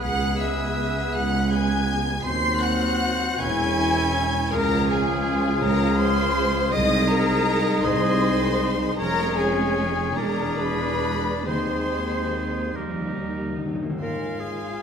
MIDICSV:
0, 0, Header, 1, 12, 480
1, 0, Start_track
1, 0, Tempo, 747198
1, 10, Time_signature, 6, 3, 24, 8
1, 5770, Tempo, 802139
1, 6730, Tempo, 874636
1, 7690, Tempo, 834492
1, 8650, Tempo, 763359
1, 9165, End_track
2, 0, Start_track
2, 0, Title_t, "Violin section"
2, 0, Program_c, 0, 48
2, 15, Note_on_c, 0, 90, 101
2, 248, Note_off_c, 0, 90, 0
2, 259, Note_on_c, 0, 88, 87
2, 736, Note_off_c, 0, 88, 0
2, 739, Note_on_c, 0, 90, 96
2, 976, Note_off_c, 0, 90, 0
2, 981, Note_on_c, 0, 92, 102
2, 1442, Note_on_c, 0, 96, 118
2, 1448, Note_off_c, 0, 92, 0
2, 1672, Note_on_c, 0, 90, 116
2, 1677, Note_off_c, 0, 96, 0
2, 2169, Note_off_c, 0, 90, 0
2, 2177, Note_on_c, 0, 92, 113
2, 2904, Note_off_c, 0, 92, 0
2, 2906, Note_on_c, 0, 82, 127
2, 3142, Note_off_c, 0, 82, 0
2, 3146, Note_on_c, 0, 80, 103
2, 3611, Note_on_c, 0, 82, 116
2, 3613, Note_off_c, 0, 80, 0
2, 3838, Note_on_c, 0, 84, 126
2, 3845, Note_off_c, 0, 82, 0
2, 4314, Note_off_c, 0, 84, 0
2, 4327, Note_on_c, 0, 87, 127
2, 4557, Note_off_c, 0, 87, 0
2, 4565, Note_on_c, 0, 82, 123
2, 5031, Note_on_c, 0, 84, 115
2, 5041, Note_off_c, 0, 82, 0
2, 5765, Note_off_c, 0, 84, 0
2, 5767, Note_on_c, 0, 82, 122
2, 5993, Note_off_c, 0, 82, 0
2, 6001, Note_on_c, 0, 80, 99
2, 6479, Note_off_c, 0, 80, 0
2, 6479, Note_on_c, 0, 82, 96
2, 6730, Note_off_c, 0, 82, 0
2, 6730, Note_on_c, 0, 83, 104
2, 7211, Note_off_c, 0, 83, 0
2, 7216, Note_on_c, 0, 84, 87
2, 7920, Note_off_c, 0, 84, 0
2, 8651, Note_on_c, 0, 77, 80
2, 9165, Note_off_c, 0, 77, 0
2, 9165, End_track
3, 0, Start_track
3, 0, Title_t, "Oboe"
3, 0, Program_c, 1, 68
3, 15, Note_on_c, 1, 71, 74
3, 1250, Note_off_c, 1, 71, 0
3, 1453, Note_on_c, 1, 72, 80
3, 2184, Note_on_c, 1, 73, 90
3, 2193, Note_off_c, 1, 72, 0
3, 2908, Note_off_c, 1, 73, 0
3, 2911, Note_on_c, 1, 77, 98
3, 4296, Note_off_c, 1, 77, 0
3, 4317, Note_on_c, 1, 75, 96
3, 5023, Note_off_c, 1, 75, 0
3, 5042, Note_on_c, 1, 75, 92
3, 5582, Note_off_c, 1, 75, 0
3, 5772, Note_on_c, 1, 73, 95
3, 6483, Note_on_c, 1, 74, 74
3, 6492, Note_off_c, 1, 73, 0
3, 7209, Note_off_c, 1, 74, 0
3, 7212, Note_on_c, 1, 72, 73
3, 7934, Note_on_c, 1, 70, 60
3, 7942, Note_off_c, 1, 72, 0
3, 8457, Note_off_c, 1, 70, 0
3, 9165, End_track
4, 0, Start_track
4, 0, Title_t, "Flute section"
4, 0, Program_c, 2, 73
4, 14, Note_on_c, 2, 78, 98
4, 247, Note_off_c, 2, 78, 0
4, 250, Note_on_c, 2, 76, 80
4, 730, Note_on_c, 2, 78, 83
4, 732, Note_off_c, 2, 76, 0
4, 971, Note_off_c, 2, 78, 0
4, 973, Note_on_c, 2, 80, 100
4, 1444, Note_off_c, 2, 80, 0
4, 1445, Note_on_c, 2, 84, 116
4, 1679, Note_off_c, 2, 84, 0
4, 1689, Note_on_c, 2, 78, 108
4, 2177, Note_off_c, 2, 78, 0
4, 2177, Note_on_c, 2, 80, 114
4, 2759, Note_off_c, 2, 80, 0
4, 2903, Note_on_c, 2, 70, 124
4, 3136, Note_off_c, 2, 70, 0
4, 3144, Note_on_c, 2, 68, 96
4, 3609, Note_on_c, 2, 70, 96
4, 3612, Note_off_c, 2, 68, 0
4, 3841, Note_on_c, 2, 72, 116
4, 3844, Note_off_c, 2, 70, 0
4, 4306, Note_off_c, 2, 72, 0
4, 4320, Note_on_c, 2, 75, 125
4, 4558, Note_off_c, 2, 75, 0
4, 4563, Note_on_c, 2, 70, 111
4, 5031, Note_off_c, 2, 70, 0
4, 5036, Note_on_c, 2, 72, 92
4, 5767, Note_off_c, 2, 72, 0
4, 5769, Note_on_c, 2, 70, 127
4, 5994, Note_off_c, 2, 70, 0
4, 5999, Note_on_c, 2, 68, 98
4, 6474, Note_on_c, 2, 70, 82
4, 6477, Note_off_c, 2, 68, 0
4, 6727, Note_off_c, 2, 70, 0
4, 6727, Note_on_c, 2, 71, 88
4, 7209, Note_off_c, 2, 71, 0
4, 7211, Note_on_c, 2, 72, 87
4, 7917, Note_off_c, 2, 72, 0
4, 9165, End_track
5, 0, Start_track
5, 0, Title_t, "Violin section"
5, 0, Program_c, 3, 48
5, 18, Note_on_c, 3, 78, 102
5, 250, Note_off_c, 3, 78, 0
5, 255, Note_on_c, 3, 76, 83
5, 734, Note_off_c, 3, 76, 0
5, 740, Note_on_c, 3, 78, 92
5, 976, Note_off_c, 3, 78, 0
5, 984, Note_on_c, 3, 80, 97
5, 1440, Note_off_c, 3, 80, 0
5, 1449, Note_on_c, 3, 84, 100
5, 1685, Note_off_c, 3, 84, 0
5, 1692, Note_on_c, 3, 78, 98
5, 2179, Note_off_c, 3, 78, 0
5, 2185, Note_on_c, 3, 80, 114
5, 2901, Note_on_c, 3, 70, 110
5, 2908, Note_off_c, 3, 80, 0
5, 3140, Note_off_c, 3, 70, 0
5, 3149, Note_on_c, 3, 68, 90
5, 3611, Note_on_c, 3, 70, 100
5, 3614, Note_off_c, 3, 68, 0
5, 3841, Note_off_c, 3, 70, 0
5, 3846, Note_on_c, 3, 72, 106
5, 4308, Note_off_c, 3, 72, 0
5, 4318, Note_on_c, 3, 75, 104
5, 4557, Note_off_c, 3, 75, 0
5, 4561, Note_on_c, 3, 70, 109
5, 5037, Note_on_c, 3, 72, 100
5, 5039, Note_off_c, 3, 70, 0
5, 5767, Note_off_c, 3, 72, 0
5, 5775, Note_on_c, 3, 70, 111
5, 5997, Note_off_c, 3, 70, 0
5, 6005, Note_on_c, 3, 68, 85
5, 6475, Note_on_c, 3, 70, 81
5, 6480, Note_off_c, 3, 68, 0
5, 6726, Note_on_c, 3, 71, 90
5, 6728, Note_off_c, 3, 70, 0
5, 7207, Note_on_c, 3, 72, 75
5, 7209, Note_off_c, 3, 71, 0
5, 7930, Note_off_c, 3, 72, 0
5, 8653, Note_on_c, 3, 84, 54
5, 8654, Note_on_c, 3, 80, 56
5, 9165, Note_off_c, 3, 80, 0
5, 9165, Note_off_c, 3, 84, 0
5, 9165, End_track
6, 0, Start_track
6, 0, Title_t, "Clarinet"
6, 0, Program_c, 4, 71
6, 20, Note_on_c, 4, 68, 76
6, 1252, Note_off_c, 4, 68, 0
6, 1454, Note_on_c, 4, 66, 84
6, 2180, Note_on_c, 4, 64, 98
6, 2190, Note_off_c, 4, 66, 0
6, 2898, Note_off_c, 4, 64, 0
6, 2902, Note_on_c, 4, 68, 88
6, 4291, Note_off_c, 4, 68, 0
6, 4321, Note_on_c, 4, 68, 96
6, 5025, Note_off_c, 4, 68, 0
6, 5036, Note_on_c, 4, 68, 110
6, 5579, Note_off_c, 4, 68, 0
6, 5762, Note_on_c, 4, 68, 85
6, 6450, Note_off_c, 4, 68, 0
6, 6478, Note_on_c, 4, 68, 99
6, 7196, Note_off_c, 4, 68, 0
6, 7215, Note_on_c, 4, 68, 69
6, 7938, Note_on_c, 4, 67, 71
6, 7947, Note_off_c, 4, 68, 0
6, 8459, Note_off_c, 4, 67, 0
6, 8656, Note_on_c, 4, 70, 81
6, 8896, Note_on_c, 4, 68, 66
6, 8906, Note_off_c, 4, 70, 0
6, 9165, Note_off_c, 4, 68, 0
6, 9165, End_track
7, 0, Start_track
7, 0, Title_t, "Viola section"
7, 0, Program_c, 5, 48
7, 12, Note_on_c, 5, 68, 60
7, 13, Note_on_c, 5, 59, 65
7, 242, Note_off_c, 5, 59, 0
7, 242, Note_off_c, 5, 68, 0
7, 249, Note_on_c, 5, 59, 70
7, 250, Note_on_c, 5, 68, 67
7, 957, Note_off_c, 5, 59, 0
7, 957, Note_off_c, 5, 68, 0
7, 972, Note_on_c, 5, 59, 68
7, 972, Note_on_c, 5, 68, 69
7, 1434, Note_off_c, 5, 59, 0
7, 1434, Note_off_c, 5, 68, 0
7, 1686, Note_on_c, 5, 66, 71
7, 1689, Note_on_c, 5, 60, 68
7, 2166, Note_off_c, 5, 66, 0
7, 2168, Note_off_c, 5, 60, 0
7, 2175, Note_on_c, 5, 64, 71
7, 2177, Note_on_c, 5, 61, 69
7, 2413, Note_off_c, 5, 61, 0
7, 2414, Note_off_c, 5, 64, 0
7, 2421, Note_on_c, 5, 61, 74
7, 2422, Note_on_c, 5, 64, 76
7, 2894, Note_off_c, 5, 61, 0
7, 2895, Note_off_c, 5, 64, 0
7, 3139, Note_on_c, 5, 65, 87
7, 3140, Note_on_c, 5, 56, 82
7, 3830, Note_off_c, 5, 56, 0
7, 3830, Note_off_c, 5, 65, 0
7, 3841, Note_on_c, 5, 65, 79
7, 3843, Note_on_c, 5, 56, 79
7, 4306, Note_off_c, 5, 65, 0
7, 4307, Note_off_c, 5, 56, 0
7, 4319, Note_on_c, 5, 56, 83
7, 4319, Note_on_c, 5, 63, 75
7, 4549, Note_off_c, 5, 63, 0
7, 4550, Note_off_c, 5, 56, 0
7, 4557, Note_on_c, 5, 63, 85
7, 4558, Note_on_c, 5, 56, 82
7, 5266, Note_off_c, 5, 63, 0
7, 5267, Note_off_c, 5, 56, 0
7, 5284, Note_on_c, 5, 63, 87
7, 5285, Note_on_c, 5, 56, 77
7, 5760, Note_off_c, 5, 56, 0
7, 5760, Note_off_c, 5, 63, 0
7, 5774, Note_on_c, 5, 56, 98
7, 5774, Note_on_c, 5, 61, 88
7, 6456, Note_off_c, 5, 56, 0
7, 6456, Note_off_c, 5, 61, 0
7, 6479, Note_on_c, 5, 56, 81
7, 6480, Note_on_c, 5, 62, 81
7, 7197, Note_off_c, 5, 56, 0
7, 7197, Note_off_c, 5, 62, 0
7, 7209, Note_on_c, 5, 56, 60
7, 7210, Note_on_c, 5, 63, 67
7, 7916, Note_off_c, 5, 56, 0
7, 7917, Note_off_c, 5, 63, 0
7, 7931, Note_on_c, 5, 63, 66
7, 7932, Note_on_c, 5, 55, 62
7, 8518, Note_off_c, 5, 63, 0
7, 8531, Note_off_c, 5, 55, 0
7, 8650, Note_on_c, 5, 65, 52
7, 8654, Note_off_c, 5, 65, 0
7, 8654, Note_on_c, 5, 65, 56
7, 9165, Note_off_c, 5, 65, 0
7, 9165, End_track
8, 0, Start_track
8, 0, Title_t, "French horn section"
8, 0, Program_c, 6, 60
8, 0, Note_on_c, 6, 56, 74
8, 0, Note_on_c, 6, 59, 75
8, 1442, Note_on_c, 6, 60, 73
8, 1448, Note_on_c, 6, 54, 73
8, 1449, Note_off_c, 6, 56, 0
8, 1450, Note_off_c, 6, 59, 0
8, 2161, Note_off_c, 6, 54, 0
8, 2171, Note_on_c, 6, 52, 78
8, 2171, Note_on_c, 6, 61, 85
8, 2173, Note_off_c, 6, 60, 0
8, 2799, Note_off_c, 6, 52, 0
8, 2908, Note_on_c, 6, 53, 85
8, 4290, Note_off_c, 6, 61, 0
8, 4294, Note_off_c, 6, 53, 0
8, 4312, Note_on_c, 6, 56, 81
8, 4312, Note_on_c, 6, 63, 85
8, 5763, Note_on_c, 6, 61, 79
8, 5766, Note_off_c, 6, 63, 0
8, 6463, Note_on_c, 6, 62, 81
8, 6474, Note_off_c, 6, 61, 0
8, 7186, Note_off_c, 6, 56, 0
8, 7200, Note_on_c, 6, 60, 63
8, 7201, Note_on_c, 6, 56, 60
8, 7204, Note_off_c, 6, 62, 0
8, 7911, Note_off_c, 6, 60, 0
8, 7912, Note_off_c, 6, 56, 0
8, 7919, Note_on_c, 6, 58, 56
8, 7920, Note_on_c, 6, 55, 62
8, 8450, Note_off_c, 6, 58, 0
8, 8451, Note_off_c, 6, 55, 0
8, 9165, End_track
9, 0, Start_track
9, 0, Title_t, "Timpani"
9, 0, Program_c, 7, 47
9, 7212, Note_on_c, 7, 51, 88
9, 7910, Note_off_c, 7, 51, 0
9, 7937, Note_on_c, 7, 51, 40
9, 7974, Note_off_c, 7, 51, 0
9, 7981, Note_on_c, 7, 51, 42
9, 8022, Note_off_c, 7, 51, 0
9, 8029, Note_on_c, 7, 51, 41
9, 8069, Note_off_c, 7, 51, 0
9, 8076, Note_on_c, 7, 51, 45
9, 8118, Note_off_c, 7, 51, 0
9, 8127, Note_on_c, 7, 51, 47
9, 8164, Note_off_c, 7, 51, 0
9, 8171, Note_on_c, 7, 51, 52
9, 8205, Note_off_c, 7, 51, 0
9, 8212, Note_on_c, 7, 51, 55
9, 8255, Note_off_c, 7, 51, 0
9, 8262, Note_on_c, 7, 51, 59
9, 8305, Note_off_c, 7, 51, 0
9, 8313, Note_on_c, 7, 51, 67
9, 8351, Note_off_c, 7, 51, 0
9, 8358, Note_on_c, 7, 51, 72
9, 8394, Note_off_c, 7, 51, 0
9, 8401, Note_on_c, 7, 51, 76
9, 8443, Note_off_c, 7, 51, 0
9, 8450, Note_on_c, 7, 51, 80
9, 8492, Note_off_c, 7, 51, 0
9, 8498, Note_on_c, 7, 51, 94
9, 8541, Note_off_c, 7, 51, 0
9, 8548, Note_on_c, 7, 51, 97
9, 8581, Note_off_c, 7, 51, 0
9, 8588, Note_on_c, 7, 51, 100
9, 8629, Note_off_c, 7, 51, 0
9, 8648, Note_on_c, 7, 44, 68
9, 9165, Note_off_c, 7, 44, 0
9, 9165, End_track
10, 0, Start_track
10, 0, Title_t, "Cello section"
10, 0, Program_c, 8, 48
10, 13, Note_on_c, 8, 37, 81
10, 648, Note_off_c, 8, 37, 0
10, 731, Note_on_c, 8, 37, 96
10, 1360, Note_off_c, 8, 37, 0
10, 1444, Note_on_c, 8, 39, 92
10, 2087, Note_off_c, 8, 39, 0
10, 2178, Note_on_c, 8, 40, 98
10, 2819, Note_off_c, 8, 40, 0
10, 2905, Note_on_c, 8, 37, 106
10, 3528, Note_off_c, 8, 37, 0
10, 3613, Note_on_c, 8, 37, 104
10, 4234, Note_off_c, 8, 37, 0
10, 4315, Note_on_c, 8, 36, 110
10, 4951, Note_off_c, 8, 36, 0
10, 5033, Note_on_c, 8, 36, 108
10, 5680, Note_off_c, 8, 36, 0
10, 5769, Note_on_c, 8, 41, 103
10, 6454, Note_off_c, 8, 41, 0
10, 6477, Note_on_c, 8, 40, 95
10, 7209, Note_on_c, 8, 39, 75
10, 7210, Note_off_c, 8, 40, 0
10, 7883, Note_off_c, 8, 39, 0
10, 7930, Note_on_c, 8, 41, 84
10, 8154, Note_off_c, 8, 41, 0
10, 8169, Note_on_c, 8, 39, 68
10, 8411, Note_on_c, 8, 43, 59
10, 8413, Note_off_c, 8, 39, 0
10, 8647, Note_off_c, 8, 43, 0
10, 8649, Note_on_c, 8, 44, 61
10, 9165, Note_off_c, 8, 44, 0
10, 9165, End_track
11, 0, Start_track
11, 0, Title_t, "Tuba"
11, 0, Program_c, 10, 58
11, 13, Note_on_c, 10, 37, 75
11, 648, Note_off_c, 10, 37, 0
11, 735, Note_on_c, 10, 37, 76
11, 1362, Note_off_c, 10, 37, 0
11, 1451, Note_on_c, 10, 39, 82
11, 2091, Note_off_c, 10, 39, 0
11, 2175, Note_on_c, 10, 28, 91
11, 2818, Note_off_c, 10, 28, 0
11, 2906, Note_on_c, 10, 37, 88
11, 3528, Note_off_c, 10, 37, 0
11, 3612, Note_on_c, 10, 37, 91
11, 4234, Note_off_c, 10, 37, 0
11, 4319, Note_on_c, 10, 36, 98
11, 4953, Note_off_c, 10, 36, 0
11, 5038, Note_on_c, 10, 36, 98
11, 5682, Note_off_c, 10, 36, 0
11, 5773, Note_on_c, 10, 29, 83
11, 6480, Note_on_c, 10, 28, 79
11, 6489, Note_off_c, 10, 29, 0
11, 7211, Note_on_c, 10, 39, 70
11, 7219, Note_off_c, 10, 28, 0
11, 8531, Note_off_c, 10, 39, 0
11, 9165, End_track
12, 0, Start_track
12, 0, Title_t, "Double bass section"
12, 0, Program_c, 11, 48
12, 10, Note_on_c, 11, 37, 86
12, 647, Note_off_c, 11, 37, 0
12, 732, Note_on_c, 11, 37, 100
12, 1361, Note_off_c, 11, 37, 0
12, 1438, Note_on_c, 11, 39, 97
12, 2084, Note_off_c, 11, 39, 0
12, 2177, Note_on_c, 11, 28, 96
12, 2819, Note_off_c, 11, 28, 0
12, 2903, Note_on_c, 11, 37, 104
12, 3527, Note_off_c, 11, 37, 0
12, 3606, Note_on_c, 11, 37, 113
12, 4230, Note_off_c, 11, 37, 0
12, 4316, Note_on_c, 11, 36, 112
12, 4951, Note_off_c, 11, 36, 0
12, 5034, Note_on_c, 11, 36, 115
12, 5680, Note_off_c, 11, 36, 0
12, 5759, Note_on_c, 11, 29, 90
12, 6449, Note_off_c, 11, 29, 0
12, 6468, Note_on_c, 11, 28, 81
12, 7203, Note_on_c, 11, 39, 68
12, 7206, Note_off_c, 11, 28, 0
12, 8527, Note_off_c, 11, 39, 0
12, 8647, Note_on_c, 11, 32, 63
12, 9165, Note_off_c, 11, 32, 0
12, 9165, End_track
0, 0, End_of_file